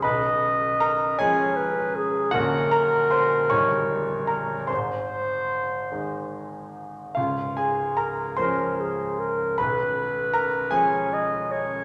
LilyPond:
<<
  \new Staff \with { instrumentName = "Clarinet" } { \time 6/8 \key des \major \tempo 4. = 51 ees''4. des''8 ces''8 aes'8 | bes'2~ bes'8 r8 | c''2~ c''16 r8. | r4. bes'8 aes'8 bes'8 |
ces''4. des''8 ees''8 des''8 | }
  \new Staff \with { instrumentName = "Grand piano" } { \time 6/8 \key des \major <ces'' ces'''>4 <bes' bes''>8 <aes' aes''>4. | <ges' ges''>8 <bes' bes''>8 <c'' c'''>8 <des'' des'''>4 <bes' bes''>8 | <c'' c'''>4. r4. | <f' f''>8 <aes' aes''>8 <bes' bes''>8 <c'' c'''>4. |
<ces'' ces'''>4 <bes' bes''>8 <aes' aes''>4. | }
  \new Staff \with { instrumentName = "Grand piano" } { \clef bass \time 6/8 \key des \major <ces,, ces,>4. <f aes des'>4. | <bes,,, bes,, ges bes des'>4. <bes,,, bes,, ees g ees'>4. | <aes,, aes,>4. <ees aes ees'>4. | <des,, des,>4. <f aes des'>4. |
<ces,, ces,>4. <f aes des'>4. | }
>>